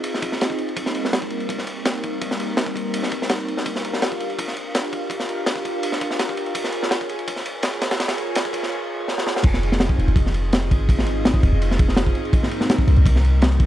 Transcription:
0.04 ride medium
0.14 snare soft
0.22 kick loud
0.22 ride medium
0.32 snare soft
0.41 snare medium
0.41 ride medium
0.50 kick medium
0.58 ride medium
0.68 ride soft
0.77 kick loud
0.77 ride medium
0.86 snare medium
0.95 ride medium
1.05 snare medium
1.13 snare loud
1.13 ride medium
1.22 kick loud
1.30 ride medium
1.40 ride soft
1.49 kick loud
1.49 ride medium
1.58 snare soft
1.67 ride medium
1.85 snare loud
1.85 ride medium
1.95 ride soft
2.03 kick loud
2.03 ride medium
2.21 kick loud
2.21 ride medium
2.31 snare medium
2.40 ride medium
2.57 snare loud
2.57 ride medium
2.66 kick medium
2.76 kick loud
2.76 ride medium
2.94 ride medium
3.03 snare soft
3.11 kick medium
3.11 ride medium
3.22 snare medium
3.29 snare loud
3.29 ride medium
3.48 ride medium
3.57 snare medium
3.66 kick loud
3.66 ride medium
3.76 snare soft
3.85 ride medium
3.93 snare medium
4.02 snare loud
4.02 ride medium
4.12 kick loud
4.20 ride medium
4.30 ride soft
4.39 kick loud
4.39 ride medium
4.48 snare soft
4.57 ride medium
4.75 snare loud
4.75 ride medium
4.84 ride soft
4.93 kick medium
4.93 ride medium
5.10 kick loud
5.10 ride medium
5.20 snare soft
5.29 ride medium
5.46 snare loud
5.46 ride medium
5.56 kick medium
5.65 kick medium
5.65 ride medium
5.83 ride medium
5.92 snare soft
6.01 kick loud
6.01 ride medium
6.11 snare soft
6.19 snare loud
6.19 ride medium
6.29 kick loud
6.37 ride medium
6.46 ride soft
6.55 kick loud
6.55 ride medium
6.64 snare soft
6.72 ride medium
6.83 snare medium
6.91 snare loud
6.91 ride medium
7.01 kick medium
7.09 ride medium
7.19 ride soft
7.28 kick loud
7.28 ride medium
7.36 snare soft
7.46 ride medium
7.63 snare loud
7.63 ride medium
7.73 ride soft
7.81 snare medium
7.81 ride medium
7.91 snare loud
7.91 ride medium
8.00 snare loud
8.00 ride medium
8.08 snare loud
8.08 ride medium
8.18 ride medium
8.35 snare loud
8.35 ride loud
8.45 kick loud
8.53 kick medium
8.53 ride medium
8.63 snare soft
9.08 snare medium
9.18 snare medium
9.27 snare medium
9.36 snare medium
9.43 9.88 F1 loud
9.43 kick loud
9.43 crash loud
9.43 ride medium
9.54 snare medium
9.63 ride medium
9.72 snare medium
9.80 snare loud
9.80 ride medium
9.89 kick loud
9.98 10.07 D#1 medium
9.98 ride medium
10.08 10.73 F1 loud
10.08 ride soft
10.16 kick loud
10.16 ride medium
10.26 snare soft
10.34 ride medium
10.53 snare loud
10.53 ride medium
10.62 ride soft
10.71 11.42 G#1 medium
10.71 kick medium
10.71 ride medium
10.89 kick loud
10.89 ride medium
10.99 snare medium
11.06 ride medium
11.25 snare loud
11.25 ride medium
11.34 kick medium
11.43 11.52 D#1 medium
11.43 kick medium
11.43 ride medium
11.53 12.14 F1 loud
11.62 ride medium
11.71 snare soft
11.79 kick loud
11.79 ride medium
11.89 snare soft
11.97 snare loud
11.97 ride medium
12.07 kick medium
12.15 ride medium
12.25 ride soft
12.33 kick loud
12.33 ride medium
12.43 snare soft
12.51 ride medium
12.61 snare medium
12.69 snare loud
12.69 ride medium
12.79 kick loud
12.88 12.96 C2 loud
12.88 ride medium
12.96 13.58 C2 loud
12.96 ride soft
13.06 kick loud
13.06 ride medium
13.16 snare soft
13.24 ride medium
13.42 snare loud
13.42 ride medium
13.52 ride soft
13.60 kick loud
13.60 ride medium

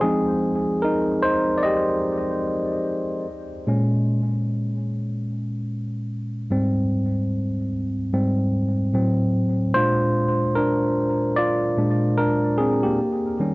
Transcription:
0.01 0.59 F3 medium
0.01 0.59 G#3 soft
0.01 0.79 C4 medium
0.01 0.60 D#4 medium
0.01 0.78 G#4 medium
0.82 1.21 D#4 medium
0.82 1.24 A#4 medium
1.22 1.57 D#4 medium
1.22 1.55 C5 medium
1.58 1.63 D5 medium
1.63 2.82 G4 medium
1.63 2.81 D#5 loud
3.67 6.46 A#2 medium
3.67 6.47 G#3 soft
3.67 6.47 C#4 medium
6.50 7.68 G#2 medium
6.50 7.68 G3 medium
6.50 7.68 C4 medium
8.13 8.49 G#2 medium
8.13 8.49 G3 soft
8.13 8.50 C4 medium
8.94 9.51 A2 medium
8.94 9.51 F#3 medium
8.94 9.52 C4 medium
9.74 10.32 A#2 medium
9.74 10.32 G#3 medium
9.74 10.33 D4 medium
9.74 10.52 F4 medium
9.74 10.58 C5 loud
10.55 11.33 D4 medium
10.55 11.39 A#4 loud
11.36 12.14 F4 medium
11.36 12.13 D5 loud
11.78 12.14 A#2 medium
11.78 12.14 G#3 soft
11.78 12.14 D4 medium
12.18 12.56 D4 medium
12.18 12.59 A#4 medium
12.58 12.82 C4 medium
12.58 12.84 G#4 medium
12.83 13.54 A#3 medium
12.83 13.54 G4 medium
13.40 13.54 D#3 medium
13.40 13.54 G3 medium
13.40 13.54 C#4 medium

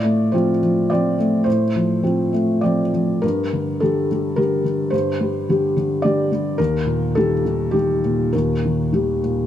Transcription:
0.00 1.42 A2 soft
0.00 0.49 A3 soft
0.00 0.32 D5 medium
0.32 0.59 F3 soft
0.32 0.59 C4 soft
0.32 0.60 F4 soft
0.32 0.89 C5 medium
0.63 0.91 F3 soft
0.90 1.17 F3 soft
0.90 1.16 C4 soft
0.90 1.17 F4 soft
0.90 1.46 D5 medium
1.19 1.64 A3 soft
1.44 3.19 A2 soft
1.44 2.63 C5 medium
1.76 2.02 F3 soft
2.03 2.31 F3 soft
2.03 2.31 C4 soft
2.03 2.31 F4 soft
2.33 2.81 A3 soft
2.61 2.90 F3 soft
2.61 2.90 C4 soft
2.61 2.91 F4 soft
2.61 3.22 D5 medium
2.94 3.23 F3 soft
3.22 4.89 G2 soft
3.22 3.81 A#4 medium
3.53 3.81 D3 soft
3.80 4.07 D3 soft
3.80 4.07 G3 soft
3.80 4.08 G4 soft
3.80 4.37 A4 medium
4.12 4.36 G3 soft
4.36 4.62 D3 soft
4.36 4.63 G3 soft
4.36 4.63 G4 soft
4.36 4.92 A#4 medium
4.64 5.09 D3 soft
4.90 6.55 G2 soft
4.90 5.75 C5 medium
5.21 5.48 G3 soft
5.49 5.74 D3 soft
5.49 5.74 G3 soft
5.49 5.74 G4 soft
5.77 6.03 D3 soft
6.02 6.29 D3 soft
6.02 6.29 G3 soft
6.02 6.29 G4 soft
6.02 6.58 D5 medium
6.32 6.59 G3 soft
6.58 8.29 D#2 soft
6.58 7.15 A#4 medium
6.86 7.32 A#2 soft
7.15 7.42 D#3 soft
7.15 7.42 G3 soft
7.15 7.42 G4 soft
7.15 7.73 A4 medium
7.45 7.72 D#3 soft
7.71 8.00 D#3 soft
7.71 8.00 G3 soft
7.71 8.32 G4 medium
8.05 8.52 A#2 soft
8.33 9.47 D#2 soft
8.33 9.47 A#4 soft
8.65 8.91 D#3 soft
8.92 9.19 D#3 soft
8.92 9.19 G3 soft
8.92 9.20 G4 soft
9.24 9.47 A#2 soft

